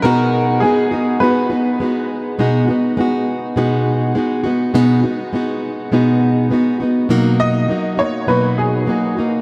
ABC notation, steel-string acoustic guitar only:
X:1
M:4/4
L:1/8
Q:"Swing 16ths" 1/4=102
K:B
V:1 name="Steel-string acoustic guitar"
[B,,G,B,DF]2 [G,B,DF] [B,DF] [G,B,DF] [B,DF] [G,B,DF]2 | [B,,G,B,DF] [B,DF] [G,B,DF]2 [B,,G,B,DF]2 [G,B,DF] [B,DF] | [B,,G,B,DF] [B,DF] [G,B,DF]2 [B,,G,B,DF]2 [G,B,DF] [B,DF] | [B,,F,A,DF]2 [F,A,DF] [A,DF] [B,,F,A,DF]2 [F,A,DF] [A,DF] |]